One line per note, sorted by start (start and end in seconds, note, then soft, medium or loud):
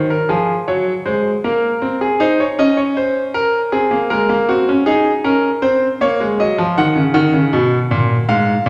0.00 0.14 D#3 medium
0.10 0.29 A#4 medium
0.29 0.53 F3 medium
0.29 0.53 G#4 medium
0.68 0.91 F#3 medium
0.68 0.91 C#5 medium
1.06 1.29 G#3 medium
1.06 1.29 C5 medium
1.44 1.68 A#3 medium
1.44 2.00 A#4 medium
1.82 2.06 C4 medium
2.01 2.20 G#4 medium
2.20 2.44 D#4 medium
2.20 2.39 C5 medium
2.40 2.58 C#5 medium
2.59 3.69 C#4 medium
2.59 2.77 D#5 medium
2.77 2.96 C#5 medium
2.97 3.20 C5 medium
3.34 3.58 A#4 medium
3.72 3.91 C4 medium
3.72 3.96 G#4 medium
3.91 4.10 A#3 medium
4.10 4.29 G#3 medium
4.10 4.34 A#4 medium
4.29 4.48 A#3 medium
4.49 4.67 C4 medium
4.49 4.72 F#4 medium
4.69 4.87 C#4 medium
4.86 5.10 D#4 medium
4.86 5.10 G#4 medium
5.24 5.48 C#4 medium
5.24 5.48 A#4 medium
5.62 5.86 C4 medium
5.62 5.86 C5 medium
6.01 6.19 A#3 medium
6.01 6.25 C#5 medium
6.20 6.39 G#3 medium
6.40 6.58 F#3 medium
6.40 6.63 D#5 medium
6.58 6.77 F3 medium
6.78 6.96 D#3 medium
6.78 7.01 F#5 loud
6.96 7.14 C#3 medium
7.14 7.33 D#3 loud
7.14 8.25 F#5 medium
7.33 7.52 C#3 medium
7.53 7.76 B2 medium
7.91 8.15 A#2 medium
8.29 8.52 G#2 medium
8.29 8.69 F5 medium
8.66 8.69 A#2 medium